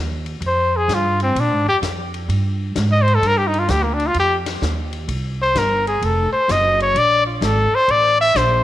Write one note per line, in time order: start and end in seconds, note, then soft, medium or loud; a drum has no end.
0.00 0.40 D#2 medium
0.26 ride soft
0.41 0.87 F2 medium
0.41 kick soft
0.41 ride medium
0.47 0.78 C5 medium
0.77 0.96 G#4 medium
0.88 1.34 G2 loud
0.88 kick soft
0.88 snare medium
0.88 hi-hat pedal medium
0.88 ride medium
0.94 1.22 F4 medium
1.20 1.41 C4 medium
1.20 ride medium
1.35 1.50 A#2 medium
1.35 kick soft
1.35 ride medium
1.40 1.68 D4 medium
1.50 1.64 G#2 medium
1.65 1.80 F2 medium
1.65 1.77 G4 loud
1.82 2.27 F2 medium
1.82 kick soft
1.82 snare medium
1.82 hi-hat pedal medium
1.82 ride medium
2.14 ride medium
2.28 2.74 G2 medium
2.28 kick soft
2.28 ride medium
2.76 3.21 G#2 loud
2.76 kick soft
2.76 snare medium
2.76 hi-hat pedal medium
2.76 ride medium
2.92 3.04 D#5 loud
3.02 3.16 C5 loud
3.08 ride soft
3.15 3.28 A4 loud
3.22 3.67 G2 medium
3.22 kick soft
3.22 ride medium
3.27 3.39 A#4 loud
3.38 3.49 G4 medium
3.48 3.61 D#4 medium
3.54 ride soft
3.59 3.72 F4 medium
3.68 4.14 D2 medium
3.68 3.84 G4 loud
3.68 kick soft
3.68 snare medium
3.68 hi-hat pedal medium
3.68 ride medium
3.83 3.95 A#3 medium
3.94 4.08 D4 medium
4.00 ride soft
4.07 4.15 F4 loud
4.14 4.60 F2 medium
4.14 kick soft
4.14 ride medium
4.20 4.37 G4 loud
4.46 snare medium
4.46 ride medium
4.62 5.07 D#2 loud
4.62 kick soft
4.62 snare medium
4.62 hi-hat pedal medium
4.93 ride medium
5.08 5.54 C2 medium
5.08 kick soft
5.08 ride medium
5.42 5.59 C5 loud
5.55 6.00 G1 medium
5.55 5.87 A#4 medium
5.55 kick soft
5.55 snare medium
5.55 hi-hat pedal medium
5.55 ride medium
5.87 6.06 G#4 medium
5.87 ride medium
6.01 6.31 F1 medium
6.01 6.32 A4 medium
6.01 kick soft
6.01 ride medium
6.32 6.53 C5 loud
6.32 muted upright bass stroke soft
6.48 6.94 F#1 loud
6.48 6.81 D#5 loud
6.48 kick soft
6.48 snare medium
6.48 hi-hat pedal medium
6.48 ride medium
6.80 7.00 C#5 loud
6.80 ride soft
6.95 7.40 A#1 medium
6.95 7.26 D5 loud
6.95 kick soft
6.95 ride medium
7.27 7.43 F4 medium
7.41 7.70 G#1 loud
7.41 7.76 A4 loud
7.41 kick soft
7.41 snare medium
7.41 hi-hat pedal medium
7.41 ride medium
7.75 7.92 C5 loud
7.88 8.34 A1 medium
7.88 8.20 D5 loud
7.88 kick soft
7.88 ride medium
8.21 8.38 E5 loud
8.35 8.64 A#1 loud
8.35 8.64 C5 loud
8.35 kick soft
8.35 snare medium
8.35 hi-hat pedal medium
8.35 ride medium